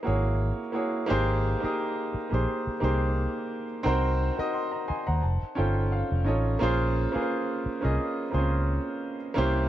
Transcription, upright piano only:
0.03 A#3 E4 F#4 G#4 C#5
0.72 A#3 E4 F#4 G#4 C#5
1.06 A#3 D#4 G4 G#4 C5
1.60 A#3 D#4 G4 G#4
1.64 D#5
2.30 A#3 D#4 G4 G#4
2.34 C5
2.80 A#3 D#4 G4 G#4 C5
3.83 C4 D#4 F#4 A#4 C5
4.36 C4 D#4 F#4 A#4 D#5
4.53 F#5 C6
4.72 D#5 A#5
4.88 D#5 G#5 C6
5.07 C5 F#5 A#5
5.22 A5
5.55 C#4 D#4 F4 A4 C5 G5
5.92 F5
6.25 C#4 D#4 F4 A4 C#5 D#5
6.59 A#3 C#4 F4 G#4 C5
7.12 A#3 C#4 F4 G#4 B4
7.22 C5
7.81 A#3 C#4 F4 G#4 D#5
8.31 A#3 C4 F4 G#4 C5
8.38 C#4
9.34 A#3 C#4 E4 G4 C5

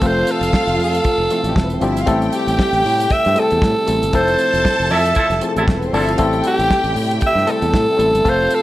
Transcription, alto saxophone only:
0.07 C5
0.32 A4
0.84 A4
2.35 G4
3.12 E5
3.39 A4
4.15 C5
4.92 E5
6.47 G4
7.27 E5
7.51 A4
8.30 C5
8.55 A4

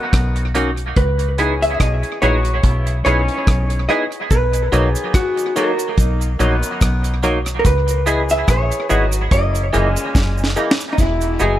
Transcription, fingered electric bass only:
0.13 B1
0.97 C#2
1.80 B1
2.23 A#1
2.64 B1
3.06 B1
3.47 B1
4.31 B1
4.73 B1
5.98 B1
6.40 A#1
6.82 B1
7.65 C#2
8.48 A#1
8.91 G#1
9.32 F#1
9.75 F#1
10.15 F#1
10.99 E1
11.41 F#1

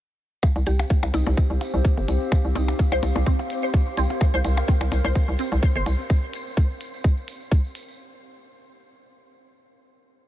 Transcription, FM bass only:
0.56 C2
0.67 C2
1.03 C2
1.14 C2
1.27 C2
1.50 C2
1.74 C2
1.97 G1
2.08 C2
2.45 C2
2.56 C2
2.92 C2
3.03 C2
3.16 C2
3.97 C2
4.34 C2
4.45 C2
4.81 C2
4.92 C2
5.05 C2
5.28 C2
5.52 C2
5.76 G1
5.86 C2

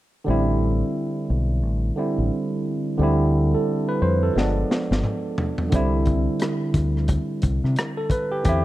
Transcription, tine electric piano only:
0.24 D3 G3 C4
0.30 E4
1.96 D3 G3 C4 E4
2.98 D3 G3 C4
3.03 E4
3.54 A4
3.89 B4
4.02 C5
4.23 A4
4.33 F3 G#3
4.37 B3 D4
5.70 D3 G3 C4
5.75 E4
7.97 A4
8.11 B4
8.32 G4
8.43 D3 C4 G4
8.49 E4

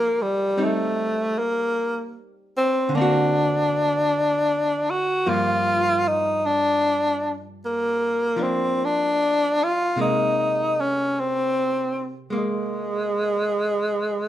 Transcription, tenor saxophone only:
Already playing: A#3
0.22 G3
0.63 A3
1.39 A#3
2.57 C4
2.95 D4
4.90 F#4
5.29 F4
6.08 D#4
6.46 D4
7.65 A#3
8.43 C4
8.85 D4
9.63 F4
10.02 D#4
10.80 C#4
11.20 C4
12.37 G#3

